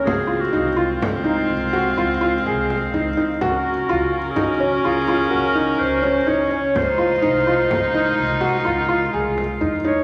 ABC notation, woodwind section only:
X:1
M:7/4
L:1/8
Q:1/4=126
K:Fphr
V:1 name="Woodwind section" clef=bass
[E,A,f]12- [E,A,f]2 | [G,B,B]12- [G,B,B]2 | [E,A,F]12- [E,A,F]2 |]